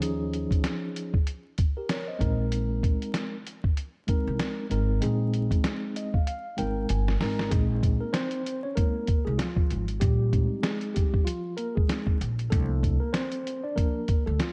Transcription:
0.00 upright bass D#2, tine electric piano F3 C#4 D#4 G#4, closed hi-hat
0.33 closed hi-hat
0.51 kick, closed hi-hat
0.64 snare, closed hi-hat
0.96 closed hi-hat
1.14 kick
1.27 closed hi-hat
1.58 kick, closed hi-hat
1.77 tine electric piano G4 A#4
1.89 tine electric piano A#4 C#5, snare, closed hi-hat
2.08 tine electric piano C5 D#5
2.19 upright bass A#1, tine electric piano G#3 C4 D#4 A#4, kick, closed hi-hat
2.52 closed hi-hat
2.83 kick, closed hi-hat
3.02 closed hi-hat
3.14 snare, closed hi-hat
3.47 closed hi-hat
3.64 kick
3.77 closed hi-hat
4.07 tine electric piano G#3 C4 D#4 A#4, kick, closed hi-hat
4.27 upright bass C2
4.40 snare, closed hi-hat
4.70 upright bass G#1, tine electric piano G#3 C4 D#4 A#4, closed hi-hat
5.01 upright bass A#1, tine electric piano G#3 C4 D#4 G#4, closed hi-hat
5.34 closed hi-hat
5.51 kick, closed hi-hat
5.64 snare, closed hi-hat
5.96 tine electric piano D#5, closed hi-hat
6.14 tine electric piano F5, kick
6.27 tine electric piano F5, closed hi-hat
6.57 upright bass G#1, tine electric piano G#3 C4 D#4 A#4 G5, closed hi-hat
6.89 upright bass G1, tine electric piano G#5, closed hi-hat
7.08 snare
7.20 upright bass G#1, tine electric piano G#3 C4 D#4 A#4 A#5, snare, open hi-hat
7.39 snare
7.50 upright bass A#1, tine electric piano G#3 C4 D#4 G#4, kick, closed hi-hat
7.83 kick, closed hi-hat
8.01 tine electric piano A#3 A#4
8.13 tine electric piano C4 C5, snare, closed hi-hat
8.31 closed hi-hat
8.46 closed hi-hat
8.63 tine electric piano C#4 C#5
8.75 tine electric piano G#3 A#3 C4 D#4 A#4, kick, closed hi-hat
9.07 kick, closed hi-hat
9.25 upright bass C2, tine electric piano G#3 G#4
9.38 tine electric piano F3 F4, snare, closed hi-hat
9.56 kick
9.71 upright bass G#1, closed hi-hat
9.88 closed hi-hat
10.00 upright bass A#1, tine electric piano G3 G4, kick, closed hi-hat
10.33 tine electric piano G#3 C4 D#4, kick, closed hi-hat
10.63 tine electric piano G#3 G#4, snare, closed hi-hat
10.81 closed hi-hat
10.94 tine electric piano G3 G4, kick, closed hi-hat
11.14 kick
11.25 tine electric piano F3 F4, closed hi-hat
11.57 tine electric piano A#3 A#4, closed hi-hat
11.75 tine electric piano G#3 G#4, kick
11.88 tine electric piano G#3 C4 D#4, snare, closed hi-hat
12.07 kick
12.21 upright bass A#1, closed hi-hat
12.39 closed hi-hat
12.50 upright bass C2, tine electric piano F3 A3 A#3 D4 A4, kick, closed hi-hat
12.83 kick, closed hi-hat
13.00 tine electric piano A#3 A#4
13.13 tine electric piano C4 C5, snare, closed hi-hat
13.32 closed hi-hat
13.47 closed hi-hat
13.64 tine electric piano D4 D5
13.76 tine electric piano F3 A#3 D4 A#4, kick, closed hi-hat
14.08 kick, closed hi-hat
14.26 upright bass D2, tine electric piano A3 A4
14.39 tine electric piano F3 F4, snare, closed hi-hat

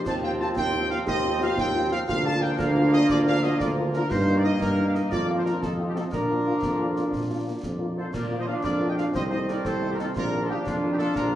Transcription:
0.04 tuba D#2, trombone section F3 C4, euphonium C4, woodwind section F4 C5, trumpet section A5, concert bass drum, snare, crash
0.22 french horn section C4 F4, trumpet section G5
0.39 french horn section C4 F4, trumpet section A5
0.56 tuba D#2, euphonium D#4, trumpet section G5, concert bass drum, snare
0.72 french horn section C4 F4
0.90 french horn section C4 F4, trumpet section F5, snare
1.06 tuba D#2, woodwind section F4 C5, euphonium G4, trumpet section D#5, concert bass drum, snare
1.24 french horn section C4 F4
1.40 french horn section C4 F4, trumpet section F5, snare
1.57 tuba D#2, trumpet section G5, concert bass drum, snare
1.73 french horn section C4 F4
1.90 french horn section C4 F4, trumpet section F5, snare
2.08 tuba D2, trombone section F3 A#3, woodwind section F4 A#4, euphonium F4, trumpet section F5, concert bass drum, snare
2.24 french horn section A#3 D4 F4, trumpet section A5
2.41 french horn section A#3 D4 F4, trumpet section G5
2.58 tuba D2, euphonium D4, woodwind section F4 A#4, trumpet section F5, concert bass drum, snare
2.75 french horn section A#3 D4 F4
2.92 french horn section A#3 D4 F4, trumpet section D#5, snare
3.08 tuba D2, woodwind section F4 A#4, trumpet section D5, concert bass drum, snare
3.26 french horn section A#3 D4 F4, trumpet section F5
3.43 french horn section A#3 D4 F4, trumpet section D#5, snare
3.59 tuba D2, woodwind section F4 A#4, trumpet section D5, concert bass drum, snare
3.78 french horn section A#3 D4 F4
3.93 french horn section A#3 D4 F4, trumpet section A#4, snare
4.10 tuba G2, trombone section D#3 A#3, euphonium D#4, woodwind section D#4 A#4, trumpet section C5, concert bass drum, snare, crash
4.28 french horn section A#3 D#4
4.37 trumpet section D5
4.44 french horn section A#3 D#4, trumpet section D#5
4.61 tuba G2, woodwind section D#4 A#4, trumpet section A#4, concert bass drum, snare
4.78 french horn section A#3 D#4
4.87 trumpet section F5
4.94 french horn section A#3 D#4, trumpet section D#5, snare
5.11 tuba F2, trombone section F3, woodwind section F4 A#4, euphonium F4, trumpet section D5, concert bass drum, snare
5.28 french horn section A#3 D4 F4, trumpet section D5
5.38 trumpet section C5
5.44 french horn section A#3 D4 F4, trumpet section A#4, snare
5.61 tuba F2, euphonium C4, trombone section D#4, woodwind section F4 D#5, trumpet section A4, concert bass drum, snare
5.79 french horn section C4 D#4 F4
5.88 trumpet section G4
5.95 french horn section C4 D#4 F4, trumpet section A4, snare
6.12 tuba A#2, trombone section F3 D4, euphonium D4, woodwind section F4 D5, trumpet section A#4, concert bass drum, snare
6.29 french horn section A#3 D4 F4
6.46 french horn section A#3 D4 F4
6.62 tuba F2, concert bass drum, snare
6.79 french horn section A#3 D4 F4
6.96 french horn section A#3 D4 F4, snare
7.13 tuba A#2, concert bass drum, snare
7.29 french horn section A#3 D4 F4
7.47 french horn section A#3 D4 F4
7.63 tuba F2, concert bass drum, snare
7.79 french horn section A#3 D4 F4
7.96 french horn section A#3 D4 F4, woodwind section A4, trumpet section C5
8.13 tuba A#2, trombone section F3 D4, woodwind section A#4, trumpet section D5, concert bass drum, snare, crash
8.31 french horn section A#3 D4 F4
8.39 woodwind section C5, trumpet section D#5
8.46 french horn section A#3 D4 F4, woodwind section D5, trumpet section F5
8.63 tuba F2, euphonium D4, woodwind section A#4, trumpet section D5, concert bass drum, snare
8.80 french horn section A#3 D4 F4
8.88 woodwind section D#5, trumpet section G5
8.97 french horn section A#3 D4 F4, woodwind section D5, trumpet section F5, snare
9.13 tuba C2, trombone section A3 C4, euphonium C4, woodwind section C5, trumpet section D#5, concert bass drum, snare
9.30 french horn section A3 C4 D#4, woodwind section C5, trumpet section D#5
9.48 french horn section A3 C4 D#4, woodwind section A#4, trumpet section D5, snare
9.65 tuba C2, euphonium C4, woodwind section A4, trumpet section C5, concert bass drum, snare
9.82 french horn section A3 C4 D#4
9.90 woodwind section G4, trumpet section A#4
9.98 french horn section A3 C4 D#4, woodwind section F4, trumpet section A4, snare
10.15 tuba A#1, trombone section A#3 D4, woodwind section F4, trumpet section A#4, concert bass drum, snare, crash
10.33 french horn section A#3 D4 F4
10.41 woodwind section F4, trumpet section A4
10.49 french horn section A#3 D4 F4, woodwind section D#4, trumpet section G4
10.65 tuba F2, woodwind section D4, euphonium D4, trumpet section F4, concert bass drum, snare
10.83 french horn section A#3 D4 F4
10.91 woodwind section D#4, trumpet section G4
10.98 french horn section A#3 D4 F4, woodwind section F4, trumpet section A4, snare
11.15 tuba A#1, woodwind section F4, trumpet section A#4, concert bass drum, snare

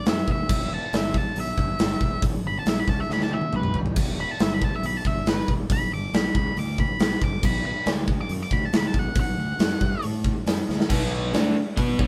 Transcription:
0.06 fingered electric bass F#2, lead electric guitar E5, snare, open hi-hat
0.28 fingered electric bass D#2, lead electric guitar E5, kick
0.49 fingered electric bass E1, kick, crash
0.74 lead electric guitar A5
0.93 fingered electric bass G1, lead electric guitar E5, snare, open hi-hat
1.14 lead electric guitar A5, kick
1.36 fingered electric bass B1, lead electric guitar E5, open hi-hat
1.58 fingered electric bass G1, kick
1.79 fingered electric bass G1, snare, open hi-hat
2.01 fingered electric bass E1, kick
2.22 fingered electric bass E1, kick, open hi-hat
2.44 fingered electric bass G1, lead electric guitar B5
2.59 lead electric guitar A5
2.66 fingered electric bass B1, lead electric guitar E5, snare, open hi-hat
2.80 lead electric guitar B5
2.88 fingered electric bass C#2, lead electric guitar A5, kick
3.00 lead electric guitar E5
3.09 fingered electric bass D2, lead electric guitar B5, snare
3.21 lead electric guitar A5, snare
3.31 lead electric guitar E5, high tom
3.41 high tom
3.53 fingered electric bass B1, lead electric guitar B4, mid tom
3.63 mid tom
3.74 fingered electric bass G1, floor tom
3.86 floor tom
3.96 fingered electric bass E1, kick, open hi-hat, crash
4.20 lead electric guitar B5
4.31 lead electric guitar A5
4.39 fingered electric bass G1, lead electric guitar E5, snare, open hi-hat
4.54 lead electric guitar B5
4.62 lead electric guitar A5, kick
4.75 lead electric guitar E5
4.83 fingered electric bass B1, lead electric guitar B5, open hi-hat
4.97 lead electric guitar A5
5.05 fingered electric bass G1, lead electric guitar E5, kick
5.26 fingered electric bass G1, lead electric guitar B4, snare, open hi-hat
5.48 fingered electric bass E1, kick
5.70 fingered electric bass E1, lead electric guitar B5, kick, open hi-hat
5.91 fingered electric bass G1, lead electric guitar D6
6.13 fingered electric bass B1, lead electric guitar B5, snare, open hi-hat
6.35 fingered electric bass C#2, lead electric guitar B5, kick
6.56 fingered electric bass D2, lead electric guitar D6, open hi-hat
6.78 lead electric guitar B5, kick
7.00 fingered electric bass B1, lead electric guitar B5, snare, open hi-hat
7.22 fingered electric bass G1, lead electric guitar D6, kick
7.43 fingered electric bass B1, lead electric guitar B5, kick, crash
7.66 lead electric guitar B5
7.86 fingered electric bass D2, snare, open hi-hat
8.08 kick
8.21 lead electric guitar D6
8.29 fingered electric bass F#2, open hi-hat
8.43 lead electric guitar D6
8.51 fingered electric bass D2, lead electric guitar B5, kick
8.65 lead electric guitar A5
8.73 fingered electric bass D2, lead electric guitar B5, snare, open hi-hat
8.87 lead electric guitar A5
8.94 fingered electric bass B1, kick
8.99 lead electric guitar F#5
9.15 fingered electric bass B1, kick, open hi-hat
9.20 lead electric guitar F#5
9.37 fingered electric bass D2
9.59 fingered electric bass F#2, snare, open hi-hat
9.81 fingered electric bass G2, kick
10.02 fingered electric bass A2, open hi-hat
10.24 kick
10.46 fingered electric bass F#2, snare, open hi-hat
10.69 fingered electric bass D2, snare
10.80 snare
10.89 fingered electric bass B1, overdriven electric guitar B2 F#3 B3, kick, crash
11.33 fingered electric bass D2, overdriven electric guitar D3 A3 D4, snare, open hi-hat
11.76 fingered electric bass B2, overdriven electric guitar B3 F#4 B4, kick, open hi-hat
11.99 fingered electric bass B1, overdriven electric guitar B2 F#3 B3, kick

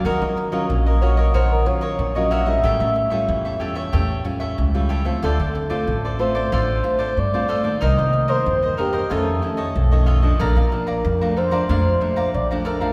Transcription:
Already playing: nylon-string guitar F#3 C#4 F4
0.05 upright bass D#2, nylon-string guitar D#3, cavaquinho F#4 A#4 C#5 D#5, soft synth lead A#4
0.22 upright bass D#3, cavaquinho A#4 C#5 D#5
0.37 muted cavaquinho stroke
0.52 nylon-string guitar F#3 C#4 F4, cavaquinho A#4 C#5 D#5
0.70 upright bass A#1, nylon-string guitar A#2
0.86 cavaquinho A#4 C#5 D#5
1.01 nylon-string guitar F#3 C#4 F4, cavaquinho F#4 A#4 C#5 D#5, soft synth lead C#5
1.17 cavaquinho A#4 C#5 D#5
1.34 upright bass A#1, nylon-string guitar D#3, cavaquinho F#4 A#4 C#5 D#5, soft synth lead C5
1.52 soft synth lead A#4
1.66 nylon-string guitar F#3 C#4 F4, soft synth lead C#5, muted cavaquinho stroke
1.81 cavaquinho A#4 C#5 D#5
1.99 upright bass A#1, nylon-string guitar A#2
2.15 nylon-string guitar F#3 C#4 F4, cavaquinho A#4 C#5 D#5, soft synth lead D#5
2.30 cavaquinho F#4 A#4 C#5 D#5, soft synth lead E5
2.46 nylon-string guitar G3 C#4 F4, cavaquinho A#4 C#5 D#5
2.63 upright bass A1, nylon-string guitar A2, cavaquinho G4 A4 C#5 E5
2.80 upright bass A2, cavaquinho A4 C#5 E5
2.95 muted cavaquinho stroke
3.10 nylon-string guitar G3 C#4 F4, cavaquinho A4 C#5 E5
3.28 upright bass E2, nylon-string guitar E3
3.45 cavaquinho A4 C#5 E5
3.60 nylon-string guitar G3 C#4 F4, cavaquinho G4 A4 C#5 E5
3.75 cavaquinho A4 C#5 E5
3.92 upright bass E2, nylon-string guitar A2, cavaquinho G4 A4 C#5 E5
4.24 nylon-string guitar G3 C#4 F4, muted cavaquinho stroke
4.40 cavaquinho A4 C#5 E5
4.58 upright bass C#2, nylon-string guitar E3
4.74 nylon-string guitar G3 C#4 F4, cavaquinho A4 C#5 E5
4.89 cavaquinho G4 A4 C#5 E5
5.05 nylon-string guitar A3 C4 F4, cavaquinho A4 C#5 E5
5.22 upright bass D2, nylon-string guitar D3, cavaquinho F4 A4 C5 D5, soft synth lead A4
5.39 upright bass D3, cavaquinho A4 C5 D5
5.55 muted cavaquinho stroke
5.70 nylon-string guitar A3 C4 F4, cavaquinho A4 C5 D5
5.87 upright bass A1, nylon-string guitar A2
6.05 cavaquinho A4 C5 D5
6.19 nylon-string guitar A3 C4 F4, cavaquinho F4 A4 C5 D5, soft synth lead C5
6.35 cavaquinho A4 C5 D5
6.52 upright bass A1, nylon-string guitar D3, cavaquinho F4 A4 C5 D5
6.83 nylon-string guitar A3 C4 F4, muted cavaquinho stroke
6.99 cavaquinho A4 C5 D5
7.17 upright bass G2, nylon-string guitar A2, soft synth lead D5
7.33 nylon-string guitar A3 C4 F4, cavaquinho A4 C5 D5
7.48 cavaquinho F4 A4 C5 D5
7.63 nylon-string guitar D#3 A#3, cavaquinho A4 C5 D5
7.81 upright bass C2, nylon-string guitar C3, cavaquinho D#4 A#4 C5 D#5, soft synth lead D#5
7.97 upright bass C3, cavaquinho A#4 C5 D#5
8.13 muted cavaquinho stroke
8.28 nylon-string guitar D#3 A#3, cavaquinho A#4 C5 D#5, soft synth lead C5
8.46 upright bass E2, nylon-string guitar G2
8.63 cavaquinho A#4 C5 D#5
8.77 nylon-string guitar D#3 A#3 D4, cavaquinho D#4 A#4 C5 D#5, soft synth lead G4
8.93 cavaquinho A#4 C5 D#5
9.10 upright bass F2, nylon-string guitar F2 D#3 A3 C#4, cavaquinho F4 A4 C#5 D#5, soft synth lead A4
9.42 nylon-string guitar D#3 A3 C#4, muted cavaquinho stroke
9.57 cavaquinho A4 C#5 D#5
9.75 upright bass B1, nylon-string guitar F2
9.91 nylon-string guitar D#3 A3 C#4, cavaquinho A4 C#5 D#5
10.06 cavaquinho F4 A4 C#5 D#5
10.22 nylon-string guitar F3 D4, cavaquinho A4 C#5 D#5
10.39 upright bass A#1, nylon-string guitar A#2, cavaquinho A4 D5 F5 A#5, soft synth lead A#4
10.56 upright bass A#2, cavaquinho D5 F5 A#5
10.71 nylon-string guitar F3 D4, muted cavaquinho stroke
10.87 cavaquinho D5 F5 A#5
11.05 upright bass F2, nylon-string guitar F2
11.21 nylon-string guitar F3 A3 D4, cavaquinho D5 F5 A#5
11.36 cavaquinho A4 D5 F5 A#5, soft synth lead C5
11.51 nylon-string guitar F3 A3 D4, cavaquinho D5 F5 A#5
11.69 upright bass F2, nylon-string guitar A#2 F3 A3 D4, cavaquinho D5 F5 A#5
12.01 nylon-string guitar F3 A3 D4, muted cavaquinho stroke
12.16 cavaquinho D5 F5 A#5
12.34 upright bass A#1, nylon-string guitar F2, soft synth lead D5
12.51 nylon-string guitar F3 A3 D4, cavaquinho D5 F5 A#5
12.65 cavaquinho A4 D5 F5 A#5, soft synth lead A#4
12.81 nylon-string guitar F3 A3 D4, cavaquinho D5 F5 A#5

